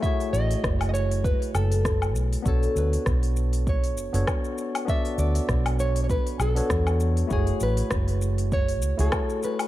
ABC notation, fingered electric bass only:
X:1
M:4/4
L:1/16
Q:"Swing 16ths" 1/4=99
K:Bdor
V:1 name="Fingered electric bass" clef=bass
z2 A,,, z F,,,4 z2 F,,,4 B,,, z | B,,, z D,, z B,,,6 F,,, F,,, z4 | z2 D,, z B,,,4 z2 B,,, z E,,3 z | F,,, z A,,, z F,,,6 C,, C,, z4 |]